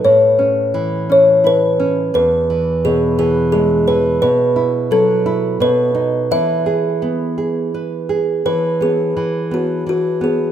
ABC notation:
X:1
M:3/4
L:1/8
Q:1/4=86
K:E
V:1 name="Kalimba"
c2 z c B2 | B2 G G G B | B2 A2 B2 | e4 z2 |
B G2 F F G |]
V:2 name="Nylon-string guitar"
A,, C E, C E C | E,, E, B,, E, G, E, | B,, E F, E B,, D | E, G B, G B G |
E, B, E, B, E, B, |]